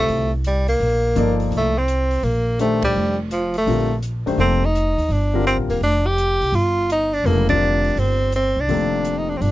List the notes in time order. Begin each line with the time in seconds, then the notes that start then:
Already playing: D3 G3 C4 F4 C5
0.00 A3
0.08 C2, open hi-hat
0.44 G3, closed hi-hat
0.68 A#3, open hi-hat
0.80 A#1, open hi-hat
1.15 G1 F3 A#3 D#4 A4 D5, closed hi-hat
1.40 open hi-hat
1.51 C2, open hi-hat
1.57 A3
1.78 C4
1.88 closed hi-hat
2.11 open hi-hat
2.23 A#1 A#3, open hi-hat
2.59 D#3 A3 D4 G4 C5, closed hi-hat
2.82 G3, kick, ride
2.96 F1
3.31 F3, closed hi-hat
3.54 A3, open hi-hat
3.67 A#1 D3 G3 C4 F4 A#4, open hi-hat
4.03 closed hi-hat
4.26 F#1 D#3 A3 D4 G4 C5, open hi-hat
4.38 F1 C3 F3 A#3 C4 D#4 A4, open hi-hat
4.65 D#4
4.75 closed hi-hat
4.98 D#2, open hi-hat
5.09 G1 D4, open hi-hat
5.33 D3 G3 C4 F4 A#4
5.47 C4, closed hi-hat
5.57 A1
5.69 E1 A#3, open hi-hat
5.81 F1 D4, open hi-hat
6.07 G4
6.18 closed hi-hat
6.41 C2, open hi-hat
6.52 G1 F4, open hi-hat
6.90 D#4, closed hi-hat
7.13 D4, open hi-hat
7.24 F1 C#3 F#3 A#3 B3 E4 A4, open hi-hat
7.49 D3 G3 C4 D4 F4 A#4, kick, ride
7.84 open hi-hat
7.96 G1 C4, open hi-hat
8.32 C4, closed hi-hat
8.56 C2
8.60 D4
8.68 F1 C3 D#3 F3 A#3 A4, open hi-hat
9.05 closed hi-hat
9.18 D#4
9.29 D4
9.37 C4
9.41 G1 D4, open hi-hat